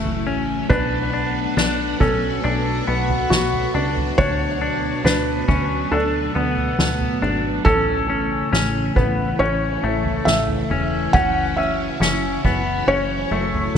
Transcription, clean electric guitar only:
0.00 0.27 A3 medium
0.27 0.70 C#4 medium
0.70 1.12 D4 medium
1.14 1.56 D4 medium
1.57 2.00 D4 medium
2.01 2.44 C#4 medium
2.44 2.87 D4 medium
2.88 3.74 B3 medium
3.75 4.17 D4 medium
4.18 4.60 D4 medium
4.61 5.04 D4 medium
5.05 5.48 D4 medium
5.48 5.91 C#4 medium
5.92 6.35 D4 medium
6.35 7.22 B3 medium
7.22 7.66 D4 medium
7.66 8.08 C#4 medium
8.10 8.52 C#4 medium
8.53 8.96 C#4 medium
8.96 9.39 B3 medium
9.40 9.83 C#4 medium
9.84 10.71 A3 medium
10.71 11.13 C#4 medium
11.14 11.57 C#4 medium
11.58 12.00 C#4 medium
12.01 12.45 C#4 medium
12.45 12.88 B3 medium
12.88 13.32 C#4 medium
13.32 13.78 A3 medium

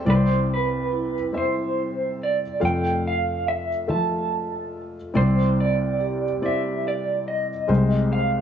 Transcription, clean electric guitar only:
0.10 0.48 C5 medium
0.54 1.37 B4 medium
1.37 2.17 C5 medium
2.23 2.61 D5 medium
2.65 3.03 G5 medium
3.07 3.45 F5 medium
3.48 3.90 E5 medium
3.90 4.81 A5 medium
5.17 5.60 C5 medium
5.60 6.45 D5 medium
6.46 6.87 E5 medium
6.88 7.27 D5 medium
7.28 8.12 D#5 medium
8.13 8.41 F5 medium

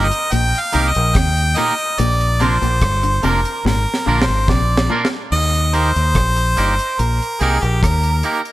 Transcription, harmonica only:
0.05 0.34 D#5 loud
0.32 0.62 G5 loud
0.60 0.90 F5 loud
0.88 1.17 D#5 loud
1.16 1.59 G5 loud
1.58 2.01 D#5 loud
1.99 2.44 D5 loud
2.42 3.26 C5 loud
3.25 3.66 A#4 medium
3.67 4.24 A#4 medium
4.22 4.52 C5 medium
4.51 4.91 D5 medium
5.32 5.76 D#5 loud
5.74 7.01 C5 loud
7.00 7.43 A#4 medium
7.41 7.64 G#4 medium
7.63 7.82 G4 medium
7.83 8.42 A#4 medium

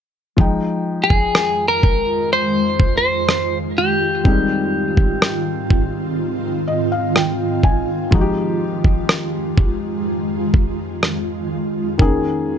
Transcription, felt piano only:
0.37 4.20 F3 medium
0.37 4.21 G#3 medium
0.37 4.22 D#4 medium
0.37 4.22 G5 medium
4.24 8.08 D#3 medium
4.24 8.09 G3 medium
4.24 8.08 G#3 medium
4.24 8.09 C4 medium
6.68 6.90 D#5 medium
6.92 7.14 F5 medium
7.16 7.61 G5 medium
7.64 8.09 G#5 medium
8.11 11.95 F3 medium
8.11 11.95 G#3 medium
8.11 11.96 D#4 medium
8.11 8.20 F#4 medium
8.21 12.00 G4 medium
11.98 12.58 D#3 medium
11.98 12.58 A#3 medium
11.98 12.58 C#4 medium
11.98 12.58 G#4 medium

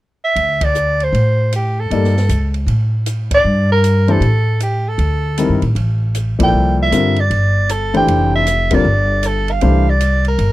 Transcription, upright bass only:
0.36 1.09 D2 medium
1.13 1.86 A2 medium
1.90 2.26 G2 medium
2.29 2.65 C#2 medium
2.66 3.40 A2 medium
3.44 4.18 G2 medium
4.20 4.94 A2 medium
4.98 5.46 D2 medium
5.49 5.62 G2 medium
5.62 5.75 A2 medium
5.75 6.35 A1 medium
6.40 6.52 A#1 medium
6.53 6.89 C2 medium
6.92 7.28 G2 medium
7.30 8.04 G1 medium
8.07 8.81 F1 medium
8.85 9.58 G1 medium
9.62 10.35 C2 medium
10.38 10.53 G1 medium

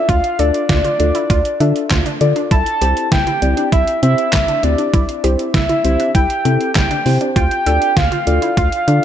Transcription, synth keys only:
0.39 0.63 D4 medium
0.39 0.63 F4 medium
0.39 0.63 A4 medium
0.39 0.63 D5 medium
1.00 1.23 D4 medium
1.00 1.23 F4 medium
1.00 1.23 A4 medium
1.00 1.23 D5 medium
1.60 1.84 D4 medium
1.60 1.84 F4 medium
1.60 1.84 A4 medium
1.60 1.84 E5 loud
2.21 2.45 D4 medium
2.21 2.45 F4 medium
2.21 2.45 A4 medium
2.21 2.45 D5 loud
2.81 3.05 C4 medium
2.81 3.05 E4 medium
2.81 3.05 G4 medium
2.81 3.05 C5 medium
3.42 3.66 C4 medium
3.42 3.66 E4 medium
3.42 3.66 G4 medium
3.42 3.66 D5 medium
4.03 4.26 C4 medium
4.03 4.26 E4 medium
4.03 4.26 G4 medium
4.03 4.26 C5 medium
4.63 4.87 C4 medium
4.63 4.87 E4 medium
4.63 4.87 G4 medium
4.63 4.87 D5 medium
5.24 5.48 C4 medium
5.24 5.48 E4 medium
5.24 5.48 G4 medium
5.24 5.48 C5 medium
5.85 6.08 C4 medium
5.85 6.08 E4 medium
5.85 6.08 G4 medium
5.85 6.08 C5 medium
6.45 6.69 C4 medium
6.45 6.69 E4 medium
6.45 6.69 G4 medium
6.45 6.69 A4 medium
7.06 7.29 C4 medium
7.06 7.29 E4 medium
7.06 7.29 G4 medium
7.06 7.29 C5 medium
7.66 7.90 D4 medium
7.66 7.90 F4 medium
7.66 7.90 A4 medium
7.66 7.90 D5 medium
8.27 8.51 D4 medium
8.27 8.51 F4 medium
8.27 8.51 A4 medium
8.27 8.51 D5 medium
8.88 9.05 D4 medium
8.88 9.05 F4 medium
8.88 9.05 A4 medium
8.88 9.05 D5 medium

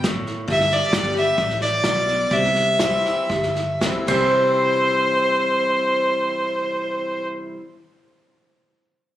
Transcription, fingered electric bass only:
0.00 0.23 G1 medium
0.48 0.80 G1 medium
0.93 1.31 G1 medium
1.38 1.77 A1 medium
1.84 2.24 B1 medium
2.31 3.01 C2 medium
3.30 3.86 G1 medium
4.08 7.24 C2 medium

